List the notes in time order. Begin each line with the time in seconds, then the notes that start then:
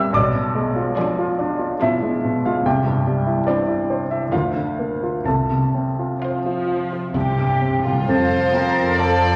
Already playing: F2 G3 F4 A#4 D5 E5 F5 A#5 E6 F6
0.13 B1 B2 D5 D6
0.34 B2
0.55 G#3
0.76 F4
0.97 F3 D4 G#4 D5
1.19 F4
1.39 D4 D5
1.59 F4
1.81 B2 F3 D4 E4 G#4 E5
2.02 G#3
2.25 B2
2.45 G#3 F4 F5
2.65 C2 C3 G4 G5
2.86 G2
3.07 G3
3.27 E4
3.47 E3 C4 D4 G4 C5 D5
3.68 E4
3.90 C5
4.10 E4 E5
4.32 D2 D3 F3 F4 A#4 F5
4.56 D3
4.79 A#3
5.03 F4
5.24 C2 C3 A4 A5
5.51 C3
5.74 C4
5.99 F4
6.22 F3 F4 C5 F5
6.46 F4
6.68 F5
6.93 F4
7.14 C2 C3 E4 G4 C5 G5
7.38 G2
7.48 C3
7.54 C3
7.61 C3 C4
7.71 C3
7.78 C3
7.83 C3 D3 F4 G4 F5
7.93 C3
8.06 F2 F3 A4 C5 A5
8.53 C4 A#4 F5 A#5
8.97 F3 A4 C5 D5 F5 A5